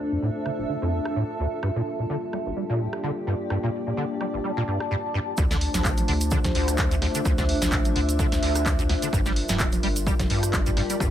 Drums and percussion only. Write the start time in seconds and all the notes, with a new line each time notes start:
0.46 cross-stick
1.05 cross-stick
1.63 cross-stick
2.33 cross-stick
2.93 cross-stick
3.50 cross-stick
4.21 cross-stick
4.80 cross-stick
5.37 kick, cross-stick, shaker
5.51 snare, shaker
5.61 open hi-hat
5.74 snare, closed hi-hat, low conga, shaker
5.85 kick, clap, shaker
5.97 closed hi-hat, low conga, shaker
6.08 open hi-hat
6.21 closed hi-hat, shaker
6.31 kick, low conga, shaker
6.44 kick, snare, closed hi-hat, low conga, shaker
6.55 open hi-hat
6.68 cross-stick, closed hi-hat, shaker
6.78 kick, clap, shaker
6.91 closed hi-hat, shaker
7.02 snare, open hi-hat
7.15 closed hi-hat, shaker
7.25 kick, cross-stick, shaker
7.38 kick, snare, shaker
7.49 open hi-hat
7.62 snare, closed hi-hat, low conga, shaker
7.72 kick, clap, shaker
7.85 closed hi-hat, low conga, shaker
7.96 open hi-hat
8.09 closed hi-hat, shaker
8.19 kick, shaker
8.32 snare, closed hi-hat, shaker
8.43 open hi-hat
8.55 cross-stick, closed hi-hat, shaker
8.66 kick, clap, shaker
8.79 closed hi-hat, shaker
8.89 snare, open hi-hat
9.02 closed hi-hat, shaker
9.13 kick, cross-stick, shaker
9.26 snare, shaker
9.36 open hi-hat
9.49 snare, closed hi-hat, low conga, shaker
9.59 kick, clap, shaker
9.72 closed hi-hat, low conga, shaker
9.83 open hi-hat
9.96 closed hi-hat, shaker
10.07 kick, low conga, shaker
10.19 kick, snare, closed hi-hat, low conga, shaker
10.30 open hi-hat
10.43 cross-stick, closed hi-hat, shaker
10.53 kick, clap, shaker
10.66 closed hi-hat, shaker
10.77 snare, open hi-hat
10.90 closed hi-hat, shaker
11.00 kick, cross-stick, shaker